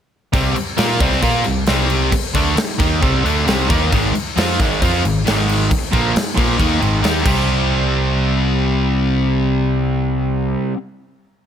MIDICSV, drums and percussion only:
0, 0, Header, 1, 2, 480
1, 0, Start_track
1, 0, Key_signature, -3, "minor"
1, 0, Tempo, 446429
1, 359, Time_signature, 4, 2, 24, 8
1, 6599, Tempo, 439560
1, 12414, End_track
2, 0, Start_track
2, 0, Title_t, "Drums"
2, 361, Note_on_c, 9, 36, 104
2, 365, Note_on_c, 9, 49, 78
2, 468, Note_off_c, 9, 36, 0
2, 473, Note_off_c, 9, 49, 0
2, 601, Note_on_c, 9, 49, 65
2, 708, Note_off_c, 9, 49, 0
2, 836, Note_on_c, 9, 49, 93
2, 848, Note_on_c, 9, 38, 117
2, 944, Note_off_c, 9, 49, 0
2, 956, Note_off_c, 9, 38, 0
2, 1080, Note_on_c, 9, 36, 117
2, 1083, Note_on_c, 9, 49, 70
2, 1188, Note_off_c, 9, 36, 0
2, 1191, Note_off_c, 9, 49, 0
2, 1206, Note_on_c, 9, 38, 31
2, 1313, Note_off_c, 9, 38, 0
2, 1315, Note_on_c, 9, 49, 81
2, 1318, Note_on_c, 9, 36, 106
2, 1422, Note_off_c, 9, 49, 0
2, 1425, Note_off_c, 9, 36, 0
2, 1550, Note_on_c, 9, 49, 52
2, 1658, Note_off_c, 9, 49, 0
2, 1789, Note_on_c, 9, 49, 79
2, 1801, Note_on_c, 9, 38, 111
2, 1897, Note_off_c, 9, 49, 0
2, 1909, Note_off_c, 9, 38, 0
2, 2041, Note_on_c, 9, 49, 61
2, 2148, Note_off_c, 9, 49, 0
2, 2283, Note_on_c, 9, 36, 109
2, 2283, Note_on_c, 9, 49, 91
2, 2390, Note_off_c, 9, 36, 0
2, 2390, Note_off_c, 9, 49, 0
2, 2521, Note_on_c, 9, 49, 64
2, 2524, Note_on_c, 9, 36, 112
2, 2629, Note_off_c, 9, 49, 0
2, 2631, Note_off_c, 9, 36, 0
2, 2765, Note_on_c, 9, 49, 93
2, 2777, Note_on_c, 9, 38, 120
2, 2872, Note_off_c, 9, 49, 0
2, 2884, Note_off_c, 9, 38, 0
2, 3006, Note_on_c, 9, 49, 60
2, 3009, Note_on_c, 9, 36, 115
2, 3114, Note_off_c, 9, 49, 0
2, 3116, Note_off_c, 9, 36, 0
2, 3253, Note_on_c, 9, 36, 93
2, 3255, Note_on_c, 9, 49, 63
2, 3361, Note_off_c, 9, 36, 0
2, 3362, Note_off_c, 9, 49, 0
2, 3501, Note_on_c, 9, 49, 56
2, 3608, Note_off_c, 9, 49, 0
2, 3737, Note_on_c, 9, 49, 77
2, 3749, Note_on_c, 9, 38, 120
2, 3845, Note_off_c, 9, 49, 0
2, 3857, Note_off_c, 9, 38, 0
2, 3979, Note_on_c, 9, 36, 125
2, 3979, Note_on_c, 9, 49, 66
2, 4086, Note_off_c, 9, 36, 0
2, 4087, Note_off_c, 9, 49, 0
2, 4220, Note_on_c, 9, 36, 107
2, 4221, Note_on_c, 9, 49, 77
2, 4328, Note_off_c, 9, 36, 0
2, 4329, Note_off_c, 9, 49, 0
2, 4464, Note_on_c, 9, 49, 62
2, 4572, Note_off_c, 9, 49, 0
2, 4704, Note_on_c, 9, 49, 94
2, 4716, Note_on_c, 9, 38, 127
2, 4811, Note_off_c, 9, 49, 0
2, 4823, Note_off_c, 9, 38, 0
2, 4943, Note_on_c, 9, 36, 108
2, 4945, Note_on_c, 9, 49, 64
2, 5050, Note_off_c, 9, 36, 0
2, 5053, Note_off_c, 9, 49, 0
2, 5183, Note_on_c, 9, 36, 100
2, 5185, Note_on_c, 9, 49, 86
2, 5291, Note_off_c, 9, 36, 0
2, 5293, Note_off_c, 9, 49, 0
2, 5431, Note_on_c, 9, 49, 63
2, 5539, Note_off_c, 9, 49, 0
2, 5665, Note_on_c, 9, 49, 86
2, 5677, Note_on_c, 9, 38, 118
2, 5773, Note_off_c, 9, 49, 0
2, 5785, Note_off_c, 9, 38, 0
2, 5905, Note_on_c, 9, 49, 71
2, 6013, Note_off_c, 9, 49, 0
2, 6141, Note_on_c, 9, 36, 113
2, 6144, Note_on_c, 9, 49, 82
2, 6249, Note_off_c, 9, 36, 0
2, 6252, Note_off_c, 9, 49, 0
2, 6379, Note_on_c, 9, 36, 106
2, 6382, Note_on_c, 9, 49, 62
2, 6486, Note_off_c, 9, 36, 0
2, 6489, Note_off_c, 9, 49, 0
2, 6623, Note_on_c, 9, 49, 93
2, 6635, Note_on_c, 9, 38, 122
2, 6732, Note_off_c, 9, 49, 0
2, 6744, Note_off_c, 9, 38, 0
2, 6859, Note_on_c, 9, 36, 102
2, 6863, Note_on_c, 9, 49, 66
2, 6968, Note_off_c, 9, 36, 0
2, 6973, Note_off_c, 9, 49, 0
2, 7099, Note_on_c, 9, 36, 91
2, 7104, Note_on_c, 9, 49, 75
2, 7208, Note_off_c, 9, 36, 0
2, 7214, Note_off_c, 9, 49, 0
2, 7347, Note_on_c, 9, 49, 55
2, 7456, Note_off_c, 9, 49, 0
2, 7584, Note_on_c, 9, 49, 79
2, 7596, Note_on_c, 9, 38, 105
2, 7693, Note_off_c, 9, 49, 0
2, 7705, Note_off_c, 9, 38, 0
2, 7820, Note_on_c, 9, 36, 108
2, 7821, Note_on_c, 9, 57, 99
2, 7930, Note_off_c, 9, 36, 0
2, 7930, Note_off_c, 9, 57, 0
2, 12414, End_track
0, 0, End_of_file